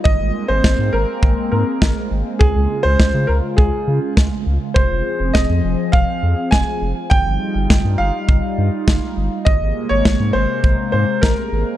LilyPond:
<<
  \new Staff \with { instrumentName = "Grand piano" } { \time 4/4 \key aes \major \tempo 4 = 102 ees''8. c''8. bes'4 bes'4 r8 | aes'8. c''8. bes'8 aes'4 r4 | c''4 ees''4 f''4 aes''4 | g''4. f''2 r8 |
ees''8. des''8. c''4 c''8 bes'4 | }
  \new Staff \with { instrumentName = "Analog synth pad" } { \time 4/4 \key aes \major <aes bes c'>1 | <des f'>1 | <f c' aes'>1 | <g ees' f'>1 |
<c aes bes>1 | }
  \new Staff \with { instrumentName = "Analog synth bass" } { \clef bass \time 4/4 \key aes \major aes,,16 aes,,16 r16 aes,,16 aes,,16 aes,16 aes,,16 r16 aes,,16 r16 aes,16 r16 aes,,16 r16 aes,,16 r16 | des,16 des,16 r16 des,16 des,16 des16 des,16 r16 des,16 r16 des16 r16 des,16 r16 des,16 r16 | f,,16 f,,16 r16 f,,16 f,,16 f,16 f,,16 r16 f,,16 r16 f,16 r16 f,,16 r16 f,,16 r16 | g,,16 g,,16 r16 g,,16 g,,16 g,16 g,,16 r16 g,,16 r16 g,16 r16 g,,16 r16 g,,16 r16 |
aes,,16 aes,,16 r16 aes,,16 aes,,16 aes,16 aes,,16 r16 aes,,16 r16 aes,16 r16 aes,,16 r16 aes,,16 r16 | }
  \new DrumStaff \with { instrumentName = "Drums" } \drummode { \time 4/4 bd4 <bd sn>4 bd4 <bd sn>4 | bd4 <bd sn>4 bd4 <bd sn>4 | bd4 <bd sn>4 bd4 <bd sn>4 | bd4 <bd sn>4 bd4 <bd sn>4 |
bd4 <bd sn>4 bd4 <bd sn>4 | }
>>